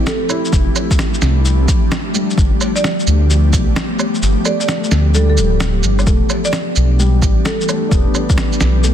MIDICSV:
0, 0, Header, 1, 6, 480
1, 0, Start_track
1, 0, Tempo, 461538
1, 554, Time_signature, 4, 2, 24, 8
1, 9297, End_track
2, 0, Start_track
2, 0, Title_t, "Marimba"
2, 0, Program_c, 0, 12
2, 70, Note_on_c, 0, 69, 86
2, 470, Note_off_c, 0, 69, 0
2, 2866, Note_on_c, 0, 74, 90
2, 3192, Note_off_c, 0, 74, 0
2, 4632, Note_on_c, 0, 74, 87
2, 4734, Note_off_c, 0, 74, 0
2, 4788, Note_on_c, 0, 74, 76
2, 4843, Note_off_c, 0, 74, 0
2, 5352, Note_on_c, 0, 69, 87
2, 5454, Note_off_c, 0, 69, 0
2, 5509, Note_on_c, 0, 69, 74
2, 5563, Note_off_c, 0, 69, 0
2, 6707, Note_on_c, 0, 74, 89
2, 7032, Note_off_c, 0, 74, 0
2, 7751, Note_on_c, 0, 69, 89
2, 8150, Note_off_c, 0, 69, 0
2, 9297, End_track
3, 0, Start_track
3, 0, Title_t, "Ambient pad"
3, 0, Program_c, 1, 92
3, 0, Note_on_c, 1, 53, 80
3, 0, Note_on_c, 1, 57, 71
3, 0, Note_on_c, 1, 64, 71
3, 0, Note_on_c, 1, 67, 89
3, 531, Note_off_c, 1, 64, 0
3, 550, Note_on_c, 1, 62, 75
3, 2431, Note_off_c, 1, 57, 0
3, 2435, Note_off_c, 1, 67, 0
3, 2453, Note_off_c, 1, 62, 0
3, 2476, Note_on_c, 1, 59, 74
3, 2478, Note_on_c, 1, 57, 73
3, 2479, Note_on_c, 1, 67, 87
3, 6268, Note_off_c, 1, 53, 0
3, 6277, Note_off_c, 1, 59, 0
3, 6278, Note_off_c, 1, 57, 0
3, 6278, Note_off_c, 1, 67, 0
3, 6316, Note_on_c, 1, 62, 71
3, 6321, Note_on_c, 1, 67, 86
3, 6322, Note_on_c, 1, 52, 81
3, 6322, Note_on_c, 1, 59, 72
3, 9297, Note_off_c, 1, 52, 0
3, 9297, Note_off_c, 1, 59, 0
3, 9297, Note_off_c, 1, 62, 0
3, 9297, Note_off_c, 1, 67, 0
3, 9297, End_track
4, 0, Start_track
4, 0, Title_t, "Felt piano"
4, 0, Program_c, 2, 0
4, 0, Control_c, 2, 64, 127
4, 0, Note_on_c, 2, 60, 71
4, 142, Note_off_c, 2, 60, 0
4, 305, Note_on_c, 2, 64, 74
4, 1100, Note_off_c, 2, 64, 0
4, 2236, Note_on_c, 2, 55, 53
4, 2487, Control_c, 2, 64, 0
4, 2682, Note_off_c, 2, 55, 0
4, 2696, Control_c, 2, 64, 127
4, 4636, Note_on_c, 2, 57, 53
4, 5358, Note_on_c, 2, 55, 64
4, 5426, Note_off_c, 2, 57, 0
4, 6147, Note_off_c, 2, 55, 0
4, 6315, Note_on_c, 2, 57, 55
4, 6329, Control_c, 2, 64, 0
4, 6524, Control_c, 2, 64, 127
4, 7105, Note_off_c, 2, 57, 0
4, 7273, Note_on_c, 2, 55, 68
4, 7993, Note_on_c, 2, 57, 80
4, 8064, Note_off_c, 2, 55, 0
4, 8206, Note_on_c, 2, 62, 52
4, 8235, Note_on_c, 2, 59, 69
4, 8784, Note_off_c, 2, 57, 0
4, 8916, Note_off_c, 2, 62, 0
4, 9025, Note_off_c, 2, 59, 0
4, 9192, Note_on_c, 2, 57, 49
4, 9297, Note_off_c, 2, 57, 0
4, 9297, End_track
5, 0, Start_track
5, 0, Title_t, "Detuned saw bass"
5, 0, Program_c, 3, 39
5, 552, Note_on_c, 3, 29, 97
5, 698, Note_off_c, 3, 29, 0
5, 1272, Note_on_c, 3, 36, 102
5, 1743, Note_off_c, 3, 36, 0
5, 2474, Note_on_c, 3, 31, 94
5, 2619, Note_off_c, 3, 31, 0
5, 3196, Note_on_c, 3, 38, 104
5, 3665, Note_off_c, 3, 38, 0
5, 3672, Note_on_c, 3, 35, 93
5, 3818, Note_off_c, 3, 35, 0
5, 4395, Note_on_c, 3, 31, 98
5, 4540, Note_off_c, 3, 31, 0
5, 5115, Note_on_c, 3, 38, 107
5, 5598, Note_on_c, 3, 26, 85
5, 5613, Note_off_c, 3, 38, 0
5, 5823, Note_off_c, 3, 26, 0
5, 5836, Note_on_c, 3, 26, 81
5, 6062, Note_off_c, 3, 26, 0
5, 6074, Note_on_c, 3, 31, 80
5, 6301, Note_off_c, 3, 31, 0
5, 6315, Note_on_c, 3, 28, 96
5, 6459, Note_off_c, 3, 28, 0
5, 7039, Note_on_c, 3, 35, 108
5, 7506, Note_off_c, 3, 35, 0
5, 7514, Note_on_c, 3, 33, 94
5, 7659, Note_off_c, 3, 33, 0
5, 8233, Note_on_c, 3, 28, 95
5, 8378, Note_off_c, 3, 28, 0
5, 8958, Note_on_c, 3, 35, 105
5, 9297, Note_off_c, 3, 35, 0
5, 9297, End_track
6, 0, Start_track
6, 0, Title_t, "Drums"
6, 70, Note_on_c, 9, 38, 99
6, 70, Note_on_c, 9, 82, 51
6, 174, Note_off_c, 9, 38, 0
6, 174, Note_off_c, 9, 82, 0
6, 308, Note_on_c, 9, 69, 70
6, 308, Note_on_c, 9, 77, 47
6, 412, Note_off_c, 9, 69, 0
6, 412, Note_off_c, 9, 77, 0
6, 467, Note_on_c, 9, 82, 29
6, 548, Note_on_c, 9, 36, 111
6, 549, Note_off_c, 9, 82, 0
6, 549, Note_on_c, 9, 82, 51
6, 652, Note_off_c, 9, 36, 0
6, 653, Note_off_c, 9, 82, 0
6, 789, Note_on_c, 9, 69, 72
6, 789, Note_on_c, 9, 77, 35
6, 893, Note_off_c, 9, 69, 0
6, 893, Note_off_c, 9, 77, 0
6, 945, Note_on_c, 9, 36, 95
6, 946, Note_on_c, 9, 82, 52
6, 1029, Note_off_c, 9, 82, 0
6, 1029, Note_on_c, 9, 38, 92
6, 1029, Note_on_c, 9, 82, 48
6, 1049, Note_off_c, 9, 36, 0
6, 1133, Note_off_c, 9, 38, 0
6, 1133, Note_off_c, 9, 82, 0
6, 1186, Note_on_c, 9, 82, 27
6, 1268, Note_on_c, 9, 38, 57
6, 1268, Note_on_c, 9, 69, 74
6, 1290, Note_off_c, 9, 82, 0
6, 1372, Note_off_c, 9, 38, 0
6, 1372, Note_off_c, 9, 69, 0
6, 1511, Note_on_c, 9, 82, 53
6, 1615, Note_off_c, 9, 82, 0
6, 1750, Note_on_c, 9, 36, 94
6, 1753, Note_on_c, 9, 69, 75
6, 1753, Note_on_c, 9, 82, 52
6, 1854, Note_off_c, 9, 36, 0
6, 1857, Note_off_c, 9, 69, 0
6, 1857, Note_off_c, 9, 82, 0
6, 1993, Note_on_c, 9, 38, 96
6, 1993, Note_on_c, 9, 82, 53
6, 2097, Note_off_c, 9, 38, 0
6, 2097, Note_off_c, 9, 82, 0
6, 2234, Note_on_c, 9, 69, 74
6, 2338, Note_off_c, 9, 69, 0
6, 2394, Note_on_c, 9, 82, 29
6, 2472, Note_on_c, 9, 36, 107
6, 2475, Note_off_c, 9, 82, 0
6, 2475, Note_on_c, 9, 82, 53
6, 2576, Note_off_c, 9, 36, 0
6, 2579, Note_off_c, 9, 82, 0
6, 2714, Note_on_c, 9, 69, 74
6, 2714, Note_on_c, 9, 77, 35
6, 2818, Note_off_c, 9, 69, 0
6, 2818, Note_off_c, 9, 77, 0
6, 2872, Note_on_c, 9, 82, 54
6, 2956, Note_off_c, 9, 82, 0
6, 2956, Note_on_c, 9, 38, 92
6, 2956, Note_on_c, 9, 82, 51
6, 3060, Note_off_c, 9, 38, 0
6, 3060, Note_off_c, 9, 82, 0
6, 3115, Note_on_c, 9, 82, 29
6, 3196, Note_on_c, 9, 69, 75
6, 3219, Note_off_c, 9, 82, 0
6, 3300, Note_off_c, 9, 69, 0
6, 3435, Note_on_c, 9, 82, 53
6, 3539, Note_off_c, 9, 82, 0
6, 3672, Note_on_c, 9, 36, 90
6, 3673, Note_on_c, 9, 69, 75
6, 3673, Note_on_c, 9, 82, 54
6, 3776, Note_off_c, 9, 36, 0
6, 3777, Note_off_c, 9, 69, 0
6, 3777, Note_off_c, 9, 82, 0
6, 3914, Note_on_c, 9, 38, 98
6, 3914, Note_on_c, 9, 82, 54
6, 4018, Note_off_c, 9, 38, 0
6, 4018, Note_off_c, 9, 82, 0
6, 4154, Note_on_c, 9, 69, 75
6, 4154, Note_on_c, 9, 77, 52
6, 4258, Note_off_c, 9, 69, 0
6, 4258, Note_off_c, 9, 77, 0
6, 4311, Note_on_c, 9, 82, 30
6, 4395, Note_off_c, 9, 82, 0
6, 4395, Note_on_c, 9, 82, 56
6, 4499, Note_off_c, 9, 82, 0
6, 4632, Note_on_c, 9, 69, 74
6, 4632, Note_on_c, 9, 77, 38
6, 4736, Note_off_c, 9, 69, 0
6, 4736, Note_off_c, 9, 77, 0
6, 4790, Note_on_c, 9, 82, 54
6, 4873, Note_off_c, 9, 82, 0
6, 4873, Note_on_c, 9, 38, 93
6, 4873, Note_on_c, 9, 82, 52
6, 4977, Note_off_c, 9, 38, 0
6, 4977, Note_off_c, 9, 82, 0
6, 5031, Note_on_c, 9, 82, 30
6, 5112, Note_on_c, 9, 38, 59
6, 5112, Note_on_c, 9, 69, 74
6, 5135, Note_off_c, 9, 82, 0
6, 5216, Note_off_c, 9, 38, 0
6, 5216, Note_off_c, 9, 69, 0
6, 5350, Note_on_c, 9, 82, 56
6, 5454, Note_off_c, 9, 82, 0
6, 5591, Note_on_c, 9, 69, 72
6, 5591, Note_on_c, 9, 82, 55
6, 5695, Note_off_c, 9, 69, 0
6, 5695, Note_off_c, 9, 82, 0
6, 5829, Note_on_c, 9, 38, 100
6, 5829, Note_on_c, 9, 82, 57
6, 5933, Note_off_c, 9, 38, 0
6, 5933, Note_off_c, 9, 82, 0
6, 6068, Note_on_c, 9, 69, 75
6, 6172, Note_off_c, 9, 69, 0
6, 6228, Note_on_c, 9, 77, 37
6, 6228, Note_on_c, 9, 82, 31
6, 6309, Note_off_c, 9, 82, 0
6, 6309, Note_on_c, 9, 82, 56
6, 6311, Note_on_c, 9, 36, 114
6, 6332, Note_off_c, 9, 77, 0
6, 6413, Note_off_c, 9, 82, 0
6, 6415, Note_off_c, 9, 36, 0
6, 6549, Note_on_c, 9, 69, 71
6, 6549, Note_on_c, 9, 77, 37
6, 6653, Note_off_c, 9, 69, 0
6, 6653, Note_off_c, 9, 77, 0
6, 6704, Note_on_c, 9, 82, 58
6, 6789, Note_off_c, 9, 82, 0
6, 6789, Note_on_c, 9, 38, 99
6, 6789, Note_on_c, 9, 82, 54
6, 6893, Note_off_c, 9, 38, 0
6, 6893, Note_off_c, 9, 82, 0
6, 7031, Note_on_c, 9, 69, 70
6, 7135, Note_off_c, 9, 69, 0
6, 7275, Note_on_c, 9, 82, 56
6, 7379, Note_off_c, 9, 82, 0
6, 7511, Note_on_c, 9, 36, 98
6, 7514, Note_on_c, 9, 69, 72
6, 7615, Note_off_c, 9, 36, 0
6, 7618, Note_off_c, 9, 69, 0
6, 7754, Note_on_c, 9, 38, 102
6, 7754, Note_on_c, 9, 82, 58
6, 7858, Note_off_c, 9, 38, 0
6, 7858, Note_off_c, 9, 82, 0
6, 7914, Note_on_c, 9, 82, 33
6, 7996, Note_off_c, 9, 82, 0
6, 7996, Note_on_c, 9, 69, 72
6, 7996, Note_on_c, 9, 77, 52
6, 7996, Note_on_c, 9, 82, 32
6, 8100, Note_off_c, 9, 69, 0
6, 8100, Note_off_c, 9, 77, 0
6, 8100, Note_off_c, 9, 82, 0
6, 8232, Note_on_c, 9, 36, 122
6, 8235, Note_on_c, 9, 82, 59
6, 8336, Note_off_c, 9, 36, 0
6, 8339, Note_off_c, 9, 82, 0
6, 8474, Note_on_c, 9, 69, 66
6, 8474, Note_on_c, 9, 77, 35
6, 8578, Note_off_c, 9, 69, 0
6, 8578, Note_off_c, 9, 77, 0
6, 8628, Note_on_c, 9, 82, 58
6, 8629, Note_on_c, 9, 36, 107
6, 8712, Note_off_c, 9, 82, 0
6, 8712, Note_on_c, 9, 38, 101
6, 8712, Note_on_c, 9, 82, 53
6, 8733, Note_off_c, 9, 36, 0
6, 8816, Note_off_c, 9, 38, 0
6, 8816, Note_off_c, 9, 82, 0
6, 8868, Note_on_c, 9, 69, 40
6, 8950, Note_off_c, 9, 69, 0
6, 8950, Note_on_c, 9, 38, 63
6, 8950, Note_on_c, 9, 69, 70
6, 9054, Note_off_c, 9, 38, 0
6, 9054, Note_off_c, 9, 69, 0
6, 9190, Note_on_c, 9, 82, 57
6, 9294, Note_off_c, 9, 82, 0
6, 9297, End_track
0, 0, End_of_file